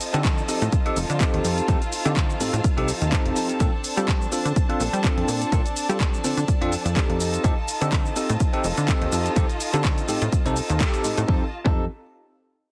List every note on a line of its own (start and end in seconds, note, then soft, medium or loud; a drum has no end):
0.00 0.15 C4 medium
0.00 0.13 D#4 medium
0.00 3.56 F4 medium
0.00 0.12 A4 medium
0.00 1.42 D#5 medium
0.00 11.24 A5 loud
0.00 open hi-hat loud
0.00 shaker medium
0.13 0.43 D3 loud
0.13 0.21 C4 medium
0.13 0.24 C4 soft
0.13 0.21 D#4 medium
0.13 0.24 D#4 medium
0.13 0.21 G4 medium
0.13 0.24 A4 medium
0.13 0.21 A4 loud
0.13 closed hi-hat medium
0.13 shaker soft
0.24 0.46 F3 medium
0.24 0.48 C4 medium
0.24 0.49 D#4 loud
0.24 0.49 A4 loud
0.24 kick loud
0.24 clap loud
0.24 closed hi-hat medium
0.24 shaker soft
0.38 shaker soft
0.48 0.95 F3 medium
0.48 0.62 C4 medium
0.48 0.96 C4 medium
0.48 0.62 D#4 medium
0.48 0.97 D#4 medium
0.48 0.63 G4 medium
0.48 0.63 A4 medium
0.48 0.98 A4 medium
0.48 open hi-hat loud
0.48 shaker medium
0.62 0.69 A2 medium
0.62 closed hi-hat medium
0.62 shaker soft
0.72 kick loud
0.72 closed hi-hat medium
0.72 shaker soft
0.85 0.97 C4 loud
0.85 0.97 D#4 medium
0.85 0.98 G4 loud
0.85 0.98 A4 loud
0.85 closed hi-hat soft
0.96 1.05 F1 medium
0.96 1.19 F3 medium
0.96 1.20 C4 medium
0.96 1.20 D#4 medium
0.96 1.21 A4 medium
0.96 open hi-hat loud
0.96 shaker medium
1.10 1.25 D3 medium
1.10 closed hi-hat medium
1.10 shaker soft
1.20 1.42 F3 medium
1.20 1.66 C4 loud
1.20 1.44 C4 loud
1.20 1.66 D#4 medium
1.20 1.45 D#4 loud
1.20 1.66 G4 medium
1.20 1.66 A4 loud
1.20 1.45 A4 loud
1.20 kick loud
1.20 clap loud
1.20 closed hi-hat medium
1.20 shaker soft
1.34 1.41 D#2 loud
1.34 closed hi-hat soft
1.44 1.61 F2 medium
1.44 1.57 F3 medium
1.44 1.58 C4 medium
1.44 1.57 D#4 medium
1.44 1.55 A4 medium
1.44 3.58 F5 medium
1.44 open hi-hat loud
1.44 shaker medium
1.57 1.67 C4 medium
1.57 1.68 D#4 medium
1.57 1.68 A4 medium
1.57 closed hi-hat medium
1.57 shaker soft
1.68 1.77 F2 loud
1.68 1.81 F3 medium
1.68 1.77 C4 loud
1.68 1.82 C4 loud
1.68 1.77 D#4 medium
1.68 1.81 D#4 loud
1.68 1.77 G4 medium
1.68 1.78 A4 loud
1.68 1.79 A4 loud
1.68 kick loud
1.68 closed hi-hat medium
1.68 shaker soft
1.81 2.07 C4 soft
1.81 2.05 D#4 medium
1.81 2.04 A4 medium
1.81 closed hi-hat soft
1.81 shaker soft
1.92 open hi-hat loud
1.92 shaker medium
2.05 2.34 D3 loud
2.05 2.13 C4 medium
2.05 2.15 C4 medium
2.05 2.13 D#4 medium
2.05 2.16 D#4 medium
2.05 2.13 G4 medium
2.05 2.16 A4 medium
2.05 2.13 A4 loud
2.05 closed hi-hat medium
2.05 shaker soft
2.16 2.38 F3 medium
2.16 2.41 A4 loud
2.16 kick loud
2.16 clap loud
2.16 closed hi-hat medium
2.16 shaker soft
2.30 shaker soft
2.39 2.51 A2 soft
2.39 2.87 F3 medium
2.39 2.54 C4 medium
2.39 2.88 C4 medium
2.39 2.54 D#4 medium
2.39 2.88 D#4 medium
2.39 2.54 G4 medium
2.39 2.55 A4 medium
2.39 2.90 A4 medium
2.39 open hi-hat loud
2.39 shaker medium
2.53 2.61 A2 medium
2.53 closed hi-hat medium
2.53 shaker soft
2.64 kick loud
2.64 closed hi-hat medium
2.64 shaker soft
2.77 2.92 C2 medium
2.77 2.89 C4 loud
2.77 2.89 D#4 medium
2.77 2.90 G4 medium
2.77 2.90 A4 loud
2.77 closed hi-hat soft
2.87 3.10 F3 medium
2.87 3.11 C4 medium
2.87 3.12 D#4 medium
2.87 3.13 A4 medium
2.87 open hi-hat loud
2.87 shaker medium
3.01 3.16 D#2 medium
3.01 closed hi-hat medium
3.01 shaker soft
3.12 3.25 F3 medium
3.12 3.57 C4 loud
3.12 3.26 C4 medium
3.12 3.58 D#4 medium
3.12 3.25 D#4 loud
3.12 3.58 G4 medium
3.12 3.58 A4 loud
3.12 3.23 A4 loud
3.12 kick loud
3.12 clap loud
3.12 closed hi-hat medium
3.12 shaker soft
3.25 3.32 F1 medium
3.25 3.35 C4 soft
3.25 3.36 D#4 medium
3.25 3.36 A4 medium
3.25 closed hi-hat soft
3.35 3.49 F3 medium
3.35 3.50 C4 medium
3.35 3.49 D#4 medium
3.35 3.47 A4 medium
3.35 open hi-hat medium
3.35 shaker medium
3.48 3.59 C4 medium
3.48 3.60 D#4 medium
3.48 3.60 A4 medium
3.48 closed hi-hat medium
3.48 shaker soft
3.59 3.69 A#2 loud
3.59 3.73 F3 medium
3.59 3.69 C4 medium
3.59 3.69 D4 medium
3.59 7.17 D4 medium
3.59 3.73 D4 medium
3.59 3.69 F4 medium
3.59 3.69 A4 loud
3.59 3.71 A4 loud
3.59 5.50 C5 medium
3.59 kick loud
3.59 closed hi-hat medium
3.59 shaker soft
3.72 3.98 C4 medium
3.72 3.97 D4 medium
3.72 3.95 A4 medium
3.84 open hi-hat loud
3.84 shaker medium
3.96 4.26 G3 loud
3.96 4.05 C4 medium
3.96 4.07 C4 medium
3.96 4.05 D4 medium
3.96 4.08 D4 medium
3.96 4.05 F4 medium
3.96 4.08 A4 medium
3.96 4.05 A4 loud
3.96 closed hi-hat medium
3.96 shaker soft
4.07 4.30 F3 medium
4.07 4.31 C4 medium
4.07 4.32 D4 medium
4.07 4.33 A4 loud
4.07 kick loud
4.07 clap loud
4.07 closed hi-hat medium
4.07 shaker soft
4.22 shaker soft
4.31 4.79 F3 medium
4.31 4.46 C4 medium
4.31 4.80 C4 medium
4.31 4.46 D4 medium
4.31 4.80 D4 medium
4.31 4.46 F4 medium
4.31 4.47 A4 medium
4.31 4.82 A4 medium
4.31 open hi-hat loud
4.31 shaker medium
4.45 4.53 D3 medium
4.45 closed hi-hat medium
4.45 shaker soft
4.56 kick loud
4.56 closed hi-hat medium
4.56 shaker soft
4.69 4.81 C4 loud
4.69 4.81 D4 medium
4.69 4.81 F4 loud
4.69 4.82 A4 loud
4.69 closed hi-hat soft
4.79 4.89 A#1 medium
4.79 5.02 F3 medium
4.79 5.03 C4 medium
4.79 5.04 D4 medium
4.79 5.04 A4 medium
4.79 open hi-hat loud
4.79 shaker medium
4.93 5.08 G3 medium
4.93 closed hi-hat medium
4.93 shaker soft
5.03 5.26 F3 medium
5.03 5.50 C4 loud
5.03 5.50 D4 medium
5.03 5.28 D4 loud
5.03 5.50 F4 medium
5.03 5.50 A4 loud
5.03 5.29 A4 loud
5.03 kick loud
5.03 clap loud
5.03 closed hi-hat medium
5.03 shaker soft
5.17 5.24 F2 loud
5.17 closed hi-hat soft
5.27 5.45 A#2 medium
5.27 5.41 F3 medium
5.27 5.42 C4 medium
5.27 5.41 D4 medium
5.27 5.40 A4 medium
5.27 open hi-hat loud
5.27 shaker medium
5.41 5.51 C4 medium
5.41 5.52 D4 medium
5.41 5.52 A4 medium
5.41 closed hi-hat medium
5.41 shaker soft
5.52 5.61 A#2 loud
5.52 5.65 F3 medium
5.52 5.61 C4 medium
5.52 5.66 C4 medium
5.52 5.61 D4 medium
5.52 5.65 D4 loud
5.52 5.61 F4 medium
5.52 5.61 A4 loud
5.52 5.64 A4 medium
5.52 7.19 D5 medium
5.52 kick loud
5.52 closed hi-hat medium
5.52 shaker soft
5.65 5.91 C4 medium
5.65 5.89 D4 medium
5.65 5.88 A4 medium
5.65 closed hi-hat soft
5.65 shaker soft
5.76 open hi-hat loud
5.76 shaker medium
5.89 6.18 G3 medium
5.89 5.97 C4 medium
5.89 5.99 C4 soft
5.89 5.97 D4 medium
5.89 6.00 D4 medium
5.89 5.97 F4 medium
5.89 6.00 A4 medium
5.89 5.97 A4 loud
5.89 closed hi-hat medium
5.89 shaker soft
6.00 6.22 F3 medium
6.00 6.23 C4 loud
6.00 6.24 D4 loud
6.00 6.25 A4 loud
6.00 kick loud
6.00 clap loud
6.00 closed hi-hat medium
6.00 shaker soft
6.14 shaker soft
6.23 6.35 D3 soft
6.23 6.71 F3 medium
6.23 6.38 C4 medium
6.23 6.72 C4 medium
6.23 6.38 D4 medium
6.23 6.72 D4 medium
6.23 6.39 F4 medium
6.23 6.39 A4 medium
6.23 6.74 A4 medium
6.23 open hi-hat medium
6.23 shaker medium
6.37 6.45 D3 medium
6.37 closed hi-hat medium
6.37 shaker soft
6.48 kick loud
6.48 closed hi-hat medium
6.48 shaker soft
6.61 6.76 F2 medium
6.61 6.73 C4 loud
6.61 6.73 D4 medium
6.61 6.73 F4 medium
6.61 6.74 A4 loud
6.61 closed hi-hat soft
6.71 6.94 F3 medium
6.71 6.95 C4 medium
6.71 6.96 D4 medium
6.71 6.96 A4 medium
6.71 open hi-hat loud
6.71 shaker medium
6.85 7.00 F2 medium
6.85 closed hi-hat medium
6.85 shaker soft
6.96 7.09 F3 medium
6.96 7.42 C4 medium
6.96 7.10 C4 loud
6.96 7.09 D4 loud
6.96 7.42 D#4 medium
6.96 7.42 G4 medium
6.96 7.42 A4 loud
6.96 7.07 A4 medium
6.96 kick loud
6.96 clap loud
6.96 closed hi-hat medium
6.96 shaker soft
7.09 7.38 F2 medium
7.09 7.18 C4 soft
7.09 7.20 D4 medium
7.09 7.20 A4 medium
7.09 closed hi-hat soft
7.19 7.33 C4 medium
7.19 7.34 D#4 medium
7.19 11.24 F4 medium
7.19 7.31 A4 medium
7.19 11.24 D#5 medium
7.19 open hi-hat medium
7.19 shaker medium
7.32 7.44 D#4 medium
7.32 7.44 A4 medium
7.32 closed hi-hat medium
7.32 shaker soft
7.44 7.53 F2 loud
7.44 7.57 C4 medium
7.44 7.53 C4 loud
7.44 7.53 D#4 medium
7.44 7.58 D#4 medium
7.44 7.53 G4 medium
7.44 7.53 A4 loud
7.44 7.55 A4 loud
7.44 kick loud
7.44 closed hi-hat medium
7.44 shaker soft
7.57 7.83 D#4 medium
7.57 7.80 A4 medium
7.68 open hi-hat loud
7.68 shaker medium
7.81 8.10 D3 loud
7.81 7.89 C4 medium
7.81 7.89 D#4 medium
7.81 7.92 D#4 soft
7.81 7.89 G4 medium
7.81 7.92 A4 medium
7.81 7.89 A4 loud
7.81 closed hi-hat medium
7.81 shaker soft
7.92 8.14 C4 medium
7.92 8.16 D#4 loud
7.92 8.17 A4 loud
7.92 kick loud
7.92 clap loud
7.92 closed hi-hat medium
7.92 shaker soft
8.06 shaker soft
8.16 8.63 C4 medium
8.16 8.30 C4 medium
8.16 8.30 D#4 medium
8.16 8.65 D#4 medium
8.16 8.31 G4 medium
8.16 8.31 A4 medium
8.16 8.66 A4 medium
8.16 open hi-hat medium
8.16 shaker medium
8.29 8.37 A2 medium
8.29 closed hi-hat medium
8.29 shaker soft
8.40 kick loud
8.40 closed hi-hat medium
8.40 shaker medium
8.53 8.65 C4 loud
8.53 8.65 D#4 medium
8.53 8.65 G4 medium
8.53 8.66 A4 loud
8.53 closed hi-hat soft
8.64 8.73 F1 medium
8.64 8.87 C4 medium
8.64 8.88 D#4 medium
8.64 8.89 A4 medium
8.64 open hi-hat loud
8.64 shaker medium
8.77 8.92 D3 medium
8.77 closed hi-hat medium
8.77 shaker soft
8.88 9.01 C4 medium
8.88 9.34 C4 loud
8.88 9.34 D#4 medium
8.88 9.02 D#4 loud
8.88 9.34 G4 medium
8.88 9.34 A4 loud
8.88 9.00 A4 loud
8.88 kick loud
8.88 clap loud
8.88 closed hi-hat medium
8.88 shaker soft
9.01 9.09 D#2 loud
9.01 9.12 D#4 soft
9.01 9.12 A4 medium
9.01 closed hi-hat soft
9.12 9.29 F2 medium
9.12 9.25 C4 medium
9.12 9.26 D#4 medium
9.12 9.24 A4 medium
9.12 open hi-hat medium
9.12 shaker medium
9.25 9.36 D#4 medium
9.25 9.36 A4 medium
9.25 closed hi-hat medium
9.25 shaker soft
9.36 9.45 F2 loud
9.36 9.49 C4 loud
9.36 9.45 C4 loud
9.36 9.45 D#4 medium
9.36 9.50 D#4 loud
9.36 9.45 G4 medium
9.36 9.46 A4 loud
9.36 9.47 A4 loud
9.36 kick loud
9.36 closed hi-hat medium
9.36 shaker soft
9.49 9.75 D#4 medium
9.49 9.71 A4 medium
9.49 closed hi-hat soft
9.49 shaker soft
9.60 open hi-hat loud
9.60 shaker medium
9.73 10.02 D3 loud
9.73 9.81 C4 medium
9.73 9.81 D#4 medium
9.73 9.84 D#4 soft
9.73 9.81 G4 medium
9.73 9.84 A4 medium
9.73 9.81 A4 loud
9.73 closed hi-hat medium
9.73 shaker soft
9.84 10.06 C4 medium
9.84 10.08 D#4 medium
9.84 10.09 A4 medium
9.84 kick loud
9.84 clap loud
9.84 closed hi-hat medium
9.84 shaker soft
9.98 closed hi-hat soft
9.98 shaker soft
10.07 10.19 A2 soft
10.07 10.55 C4 medium
10.07 10.22 C4 medium
10.07 10.22 D#4 medium
10.07 10.57 D#4 medium
10.07 10.23 G4 medium
10.07 10.23 A4 medium
10.07 10.58 A4 medium
10.07 open hi-hat medium
10.07 shaker medium
10.22 10.29 A2 medium
10.22 closed hi-hat medium
10.22 shaker soft
10.32 kick loud
10.32 closed hi-hat medium
10.32 shaker soft
10.45 10.61 C2 medium
10.45 10.57 C4 loud
10.45 10.57 D#4 loud
10.45 10.58 G4 medium
10.45 10.58 A4 loud
10.45 closed hi-hat soft
10.45 shaker soft
10.56 10.78 C4 medium
10.56 10.80 D#4 medium
10.56 10.81 A4 medium
10.56 open hi-hat loud
10.56 shaker medium
10.70 10.85 D#2 medium
10.70 closed hi-hat medium
10.70 shaker soft
10.80 11.02 C4 loud
10.80 11.26 C4 loud
10.80 11.26 D#4 medium
10.80 11.04 D#4 medium
10.80 11.26 G4 medium
10.80 11.26 A4 loud
10.80 11.05 A4 loud
10.80 kick loud
10.80 clap loud
10.80 closed hi-hat medium
10.80 shaker soft
10.94 closed hi-hat soft
10.94 shaker soft
11.04 11.15 A2 soft
11.04 11.17 C4 medium
11.04 11.18 D#4 medium
11.04 11.16 A4 medium
11.04 open hi-hat medium
11.04 shaker medium
11.17 11.25 A2 loud
11.17 11.28 D#4 medium
11.17 11.28 A4 medium
11.17 closed hi-hat medium
11.17 shaker soft
11.27 11.43 F2 loud
11.27 11.42 C4 medium
11.27 11.43 C4 medium
11.27 11.43 D#4 medium
11.27 11.44 D#4 medium
11.27 11.51 F4 medium
11.27 11.43 G4 medium
11.27 11.43 A4 loud
11.27 11.45 A4 medium
11.27 11.51 D#5 medium
11.27 11.51 A5 medium
11.27 kick loud
11.65 11.88 F2 medium
11.65 11.82 C4 medium
11.65 11.84 C4 medium
11.65 11.83 D#4 medium
11.65 11.85 D#4 medium
11.65 11.83 G4 medium
11.65 11.84 A4 medium
11.65 11.85 A4 medium
11.65 kick loud